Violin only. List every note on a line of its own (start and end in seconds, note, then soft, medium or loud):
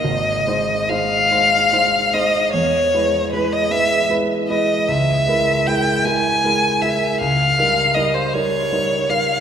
0.00 0.90 D#5 medium
0.89 2.15 F5 medium
2.14 2.52 D#5 medium
2.52 3.30 C#5 medium
3.33 3.54 B4 medium
3.53 3.73 D#5 medium
3.71 4.09 E5 medium
4.49 4.90 D#5 medium
4.89 5.68 E5 medium
5.67 6.07 G5 medium
6.05 6.83 G#5 medium
6.82 7.20 E5 medium
7.20 7.96 F5 medium
7.94 8.16 D#5 medium
8.14 8.35 C5 medium
8.33 9.11 C#5 medium
9.09 9.40 F5 medium